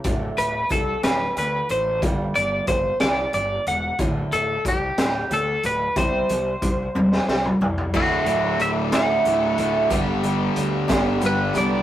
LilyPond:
<<
  \new Staff \with { instrumentName = "Clean electric guitar" } { \time 6/8 \key d \mixolydian \tempo 4. = 61 r8 b'8 a'8 b'8 b'8 c''8 | r8 d''8 c''8 d''8 d''8 fis''8 | r8 a'8 g'4 a'8 b'8 | c''2~ c''8 r8 |
fis'4 e''8 fis''4.~ | fis''4 r4 b'8 d''8 | }
  \new Staff \with { instrumentName = "Steel-string acoustic guitar" } { \clef bass \time 6/8 \key d \mixolydian <d, a, d>8 <d, a,>8 <d, a,>8 <d, a,>8 <d, a,>8 <d, a,>8 | <g, d g>8 d8 <g, d>8 <g, d>8 <g, d>8 <g, d>8 | <d, a, d>8 <d, a,>8 <d, a,>8 <d, a,>8 <d, a,>8 <d, a,>8 | <c g c'>8 <c g>8 <c g>8 <c g>8 <c g>8 <c g>8 |
<d, a, d a e'>4. <d, a, d a e'>8 <a, d a e'>8 <d a e'>8 | <g, d g b d' g'>4. <g, d g b d' g'>8 <g b d' g'>8 <g b d' g'>8 | }
  \new Staff \with { instrumentName = "Distorted electric guitar" } { \clef bass \time 6/8 \key d \mixolydian r2. | r2. | r2. | r2. |
<d, a, d>8 <d, a, d>4 <d, a, d>8 <d, a, d>8 <d, a, d>8 | <g, d g>8 <g, d g>4 <g, d g>8 <g, d g>8 <g, d g>8 | }
  \new Staff \with { instrumentName = "Overdriven electric guitar" } { \clef bass \time 6/8 \key d \mixolydian r2. | r2. | r2. | r2. |
<d, a, d>8 <d, a, d>4 <d, a, d>8 <d, a, d>8 <d, a, d>8 | <g, d g>8 <g, d g>4 <g, d g>8 <g, d g>8 <g, d g>8 | }
  \new Staff \with { instrumentName = "Picked electric bass" } { \clef bass \time 6/8 \key d \mixolydian d,,8 d,,8 c,8 d,,8 d,8 a,,8 | g,,8 g,,8 g,,8 c,8 g,,8 e,,8 | d,,8 d,,8 c,8 d,,8 d,8 d,,8 | c,8 c,8 c,8 e,,8 c,8 c,8 |
d,,8 d,,8 d,,4 d,,8 d,,8 | g,,4 d,8 g,,8 g,,8 c,8 | }
  \new DrumStaff \with { instrumentName = "Drums" } \drummode { \time 6/8 <hh bd>8 hh8 <hh bd>8 <hh sn>8 hh8 hh8 | <hh bd>8 hh8 <hh bd>8 <hh sn>8 hh8 hh8 | <hh bd>8 hh8 <hh bd>8 <hh sn>8 hh8 hh8 | <hh bd>8 hh8 <hh bd>8 tommh16 sn16 sn16 toml16 tomfh16 tomfh16 |
<cymc bd>8 hh8 hh8 <hh sn>8 hh8 hh8 | <hh bd>8 hh8 hh8 <hh bd sn>8 hh8 hh8 | }
>>